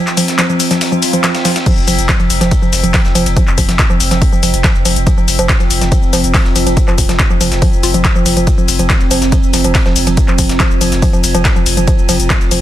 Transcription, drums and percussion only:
0.07 snare, clap, shaker
0.17 open hi-hat, ride, shaker
0.28 snare, closed hi-hat, shaker
0.39 snare, clap, closed hi-hat, ride, shaker
0.50 shaker
0.60 open hi-hat, ride, shaker
0.71 snare, closed hi-hat, shaker
0.81 snare, open hi-hat, ride, shaker
0.92 shaker
1.02 open hi-hat, ride, shaker
1.13 closed hi-hat, shaker
1.24 snare, clap, closed hi-hat, ride, shaker
1.35 snare, ride, shaker
1.45 snare, open hi-hat, ride, shaker
1.56 snare, closed hi-hat, ride, shaker
1.66 kick, closed hi-hat, crash, ride, shaker
1.77 shaker
1.88 open hi-hat, ride, shaker
1.99 closed hi-hat, shaker
2.09 kick, snare, clap, closed hi-hat, ride, shaker
2.20 ride, shaker
2.30 open hi-hat, ride, shaker
2.41 snare, closed hi-hat, shaker
2.51 kick, closed hi-hat, ride, shaker
2.62 shaker
2.73 snare, open hi-hat, ride, shaker
2.84 closed hi-hat, shaker
2.94 kick, snare, clap, open hi-hat, ride, shaker
3.05 snare, shaker
3.15 open hi-hat, ride, shaker
3.26 closed hi-hat, ride, shaker
3.37 kick, closed hi-hat, ride, shaker
3.47 clap, shaker
3.58 kick, open hi-hat, ride, shaker
3.69 snare, closed hi-hat, shaker
3.79 kick, snare, clap, closed hi-hat, ride, shaker
3.90 shaker
4.00 open hi-hat, ride, shaker
4.11 snare, closed hi-hat, shaker
4.22 kick, open hi-hat, ride, shaker
4.33 shaker
4.43 open hi-hat, ride, shaker
4.54 closed hi-hat, shaker
4.64 kick, snare, clap, closed hi-hat, ride, shaker
4.75 shaker
4.85 open hi-hat, ride, shaker
4.96 closed hi-hat, shaker
5.07 kick, closed hi-hat, ride, shaker
5.18 shaker
5.28 open hi-hat, ride, shaker
5.39 closed hi-hat, shaker
5.49 kick, snare, clap, closed hi-hat, ride, shaker
5.60 ride, shaker
5.71 open hi-hat, ride, shaker
5.81 snare, closed hi-hat, shaker
5.92 kick, closed hi-hat, ride, shaker
6.03 shaker
6.13 snare, open hi-hat, ride, shaker
6.24 closed hi-hat, shaker
6.34 kick, snare, clap, open hi-hat, ride, shaker
6.45 snare, shaker
6.56 open hi-hat, ride, shaker
6.67 closed hi-hat, ride, shaker
6.77 kick, closed hi-hat, ride, shaker
6.88 clap, shaker
6.98 kick, open hi-hat, ride, shaker
7.09 snare, closed hi-hat, shaker
7.19 kick, snare, clap, closed hi-hat, ride, shaker
7.30 shaker
7.41 open hi-hat, ride, shaker
7.52 snare, closed hi-hat, shaker
7.62 kick, open hi-hat, ride, shaker
7.73 shaker
7.83 open hi-hat, ride, shaker
7.94 closed hi-hat, shaker
8.05 kick, snare, clap, closed hi-hat, ride, shaker
8.16 shaker
8.26 open hi-hat, ride, shaker
8.37 closed hi-hat, shaker
8.47 kick, closed hi-hat, ride, shaker
8.58 shaker
8.68 open hi-hat, ride, shaker
8.79 closed hi-hat, shaker
8.90 kick, snare, clap, closed hi-hat, ride, shaker
9.01 ride, shaker
9.11 open hi-hat, ride, shaker
9.22 snare, closed hi-hat, shaker
9.32 kick, closed hi-hat, ride, shaker
9.43 shaker
9.53 snare, open hi-hat, ride, shaker
9.64 closed hi-hat, shaker
9.75 kick, snare, clap, open hi-hat, ride, shaker
9.86 snare, shaker
9.96 open hi-hat, ride, shaker
10.07 closed hi-hat, ride, shaker
10.17 kick, closed hi-hat, ride, shaker
10.28 clap, shaker
10.39 kick, open hi-hat, ride, shaker
10.49 snare, closed hi-hat, shaker
10.60 kick, snare, clap, closed hi-hat, ride, shaker
10.71 shaker
10.81 open hi-hat, ride, shaker
10.92 snare, closed hi-hat, shaker
11.02 kick, open hi-hat, ride, shaker
11.13 shaker
11.24 open hi-hat, ride, shaker
11.35 closed hi-hat, shaker
11.45 kick, snare, clap, closed hi-hat, ride, shaker
11.56 shaker
11.66 open hi-hat, ride, shaker
11.77 closed hi-hat, shaker
11.88 kick, closed hi-hat, ride, shaker
11.98 shaker
12.09 open hi-hat, ride, shaker
12.20 closed hi-hat, shaker
12.30 kick, snare, clap, closed hi-hat, ride, shaker
12.41 ride, shaker
12.51 open hi-hat, ride, shaker

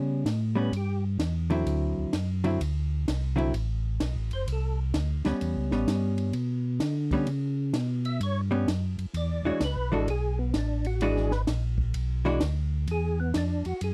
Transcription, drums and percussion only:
0.26 snare, hi-hat pedal, ride
0.73 ride
1.19 snare, hi-hat pedal, ride
1.50 ride
1.67 ride
2.13 snare, hi-hat pedal, ride
2.44 ride
2.61 ride
3.08 snare, hi-hat pedal, ride
3.38 ride
3.54 ride
4.00 snare, hi-hat pedal, ride
4.31 ride
4.48 ride
4.94 snare, hi-hat pedal, ride
5.25 snare, ride
5.41 ride
5.71 snare
5.88 snare, hi-hat pedal, ride
6.18 ride
6.33 ride
6.80 snare, hi-hat pedal, ride
7.11 kick, ride
7.27 ride
7.73 snare, hi-hat pedal, ride
8.05 ride
8.21 ride
8.68 snare, hi-hat pedal, ride
8.99 ride
9.14 ride
9.60 snare, hi-hat pedal, ride
10.08 ride
10.54 snare, hi-hat pedal, ride
10.85 ride
11.01 ride
11.17 snare
11.31 snare
11.47 snare, hi-hat pedal, ride
11.78 kick
11.94 ride
12.40 snare, hi-hat pedal, ride
12.87 ride
13.34 snare, hi-hat pedal, ride
13.65 ride
13.81 ride

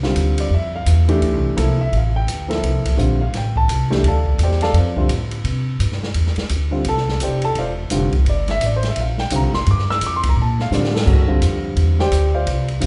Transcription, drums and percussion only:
0.03 snare
0.16 hi-hat pedal, ride
0.38 ride
0.86 hi-hat pedal, ride
1.08 ride
1.22 ride
1.57 hi-hat pedal, ride
1.93 ride
2.28 hi-hat pedal, ride
2.51 snare, ride
2.63 ride
2.85 kick, ride
2.99 hi-hat pedal
3.34 snare, ride
3.56 kick
3.69 hi-hat pedal, ride
3.91 snare
4.04 ride
4.26 kick
4.39 hi-hat pedal, ride
4.51 snare
4.61 snare, ride
4.74 ride
4.96 kick
5.09 hi-hat pedal, ride
5.31 ride
5.45 ride
5.80 hi-hat pedal, ride
5.92 snare
6.03 snare
6.14 ride
6.26 snare
6.36 snare, ride
6.49 hi-hat pedal, ride
6.84 ride
6.97 snare
7.08 snare
7.20 hi-hat pedal, ride
7.42 ride
7.55 ride
7.90 hi-hat pedal, ride
8.12 kick, ride
8.26 ride
8.48 snare, ride
8.61 hi-hat pedal, ride
8.83 snare, ride
8.96 ride
9.18 snare
9.30 hi-hat pedal, ride
9.53 snare
9.66 ride
9.79 snare
9.90 snare
10.01 hi-hat pedal, ride
10.23 kick, ride
10.59 snare
10.72 snare, hi-hat pedal
10.84 snare
10.96 snare
11.07 kick, crash
11.29 kick
11.42 hi-hat pedal, ride
11.76 ride
11.99 snare
12.12 hi-hat pedal, ride
12.47 ride
12.68 ride
12.81 hi-hat pedal, ride

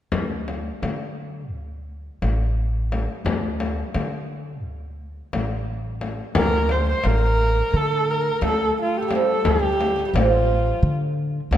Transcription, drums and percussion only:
0.12 frame drum
0.48 frame drum
0.83 frame drum
2.22 frame drum
2.92 frame drum
3.26 frame drum
3.60 frame drum
3.94 frame drum
5.33 frame drum
6.01 frame drum
6.35 frame drum
6.69 frame drum
7.04 frame drum
8.42 frame drum
9.11 frame drum
9.45 frame drum
9.81 frame drum
10.16 frame drum
11.53 frame drum

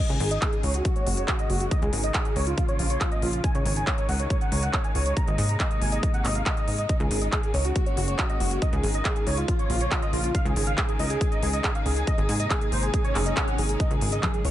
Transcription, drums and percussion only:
0.09 closed hi-hat
0.20 open hi-hat
0.31 closed hi-hat
0.42 kick, clap, closed hi-hat
0.53 closed hi-hat
0.63 open hi-hat
0.74 closed hi-hat
0.85 kick, closed hi-hat
0.96 closed hi-hat
1.07 open hi-hat
1.17 closed hi-hat
1.28 kick, clap, closed hi-hat
1.39 closed hi-hat
1.50 open hi-hat
1.60 closed hi-hat
1.71 kick, closed hi-hat
1.82 closed hi-hat
1.93 open hi-hat
2.04 closed hi-hat
2.14 kick, clap, closed hi-hat
2.25 closed hi-hat
2.36 open hi-hat
2.47 closed hi-hat
2.58 kick, closed hi-hat
2.68 closed hi-hat
2.79 open hi-hat
2.90 closed hi-hat
3.01 kick, clap, closed hi-hat
3.12 closed hi-hat
3.22 open hi-hat
3.33 closed hi-hat
3.44 kick, closed hi-hat
3.55 closed hi-hat
3.66 open hi-hat
3.76 closed hi-hat
3.87 kick, clap, closed hi-hat
3.98 closed hi-hat
4.09 open hi-hat
4.20 closed hi-hat
4.30 kick, closed hi-hat
4.41 closed hi-hat
4.52 open hi-hat
4.63 closed hi-hat
4.73 kick, clap, closed hi-hat
4.84 closed hi-hat
4.95 open hi-hat
5.06 closed hi-hat
5.17 kick, closed hi-hat
5.27 closed hi-hat
5.38 open hi-hat
5.49 closed hi-hat
5.60 kick, clap, closed hi-hat
5.71 closed hi-hat
5.82 open hi-hat
5.92 closed hi-hat
6.03 kick, closed hi-hat
6.14 closed hi-hat
6.25 clap, open hi-hat
6.35 closed hi-hat
6.46 kick, clap, closed hi-hat
6.57 closed hi-hat
6.68 open hi-hat
6.78 closed hi-hat
6.89 kick, closed hi-hat
7.00 closed hi-hat
7.11 open hi-hat
7.22 closed hi-hat
7.32 kick, clap, closed hi-hat
7.43 closed hi-hat
7.54 open hi-hat
7.65 closed hi-hat
7.76 kick, closed hi-hat
7.86 closed hi-hat
7.97 open hi-hat
8.08 closed hi-hat
8.19 kick, clap, closed hi-hat
8.30 closed hi-hat
8.40 open hi-hat
8.51 closed hi-hat
8.62 kick, closed hi-hat
8.73 closed hi-hat
8.83 open hi-hat
8.94 closed hi-hat
9.05 kick, clap, closed hi-hat
9.16 closed hi-hat
9.27 open hi-hat
9.38 closed hi-hat
9.48 kick, closed hi-hat
9.59 closed hi-hat
9.70 open hi-hat
9.81 closed hi-hat
9.91 kick, clap, closed hi-hat
10.02 closed hi-hat
10.13 open hi-hat
10.24 closed hi-hat
10.35 kick, closed hi-hat
10.46 closed hi-hat
10.56 open hi-hat
10.67 closed hi-hat
10.78 kick, clap, closed hi-hat
10.89 closed hi-hat
10.99 open hi-hat
11.10 closed hi-hat
11.21 kick, closed hi-hat
11.32 closed hi-hat
11.43 open hi-hat
11.53 closed hi-hat
11.64 kick, clap, closed hi-hat
11.75 closed hi-hat
11.86 open hi-hat
11.97 closed hi-hat
12.07 kick, closed hi-hat
12.18 closed hi-hat
12.29 open hi-hat
12.40 closed hi-hat
12.50 kick, clap, closed hi-hat
12.61 closed hi-hat
12.72 open hi-hat
12.83 closed hi-hat
12.94 kick, closed hi-hat
13.05 closed hi-hat
13.15 clap, open hi-hat
13.26 closed hi-hat
13.37 kick, clap, closed hi-hat
13.48 closed hi-hat
13.58 open hi-hat
13.69 closed hi-hat
13.80 kick, closed hi-hat
13.91 closed hi-hat
14.01 open hi-hat
14.12 closed hi-hat
14.23 kick, clap, closed hi-hat, high conga
14.34 closed hi-hat
14.45 open hi-hat

